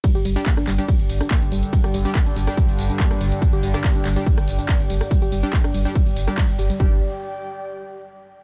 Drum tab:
RD |x---x---x---x---|x---x---x---x---|x---x---x---x---|x---x---x---x---|
HH |xxoxxxoxxxoxxxox|xxoxxxoxxooxxxox|xxoxxxoxxxoxxxox|xxoxxxoxxooxxxox|
TB |xxxxxxxxxxxxxxxx|xxxxxxxxxxxxxxxx|xxxxxxxxxxxxxxxx|xxxxxxxxxxxxxxxx|
CP |----x-x-----x---|----x-------x---|----x-x-----x---|----x-------x---|
SD |-----r-----r----|-r-----r-----r--|---r-----r-----r|-----r-----r----|
BD |o---o---o---o---|o---o---o---o---|o---o---o---o---|o---o---o---o---|

RD |----------------|
HH |----------------|
TB |----------------|
CP |----------------|
SD |----------------|
BD |o---------------|